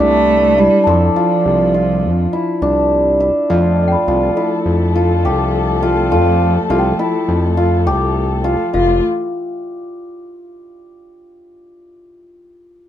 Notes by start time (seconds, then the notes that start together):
Already playing: E4 A4
0.00 C2 A3 D4
0.58 G3 E4
0.84 F2 A4 A5
0.89 F3 C6
0.94 D6
1.16 F4
1.46 C2
1.74 F4
2.04 F2
2.33 E4
2.62 C2 D4
3.20 E4
3.50 F2 F3 A3 F4 A4
3.88 G5
3.92 B5
4.08 C2 F4
4.37 E4
4.66 F2
4.95 F4
5.25 C2 G4
5.83 F4
6.12 F2 F4
6.70 C2 F4
6.79 G5
6.99 E4
7.28 F2
7.57 F4
7.87 C2 G4
8.44 F4
8.74 F1 E3 A3 F4 F5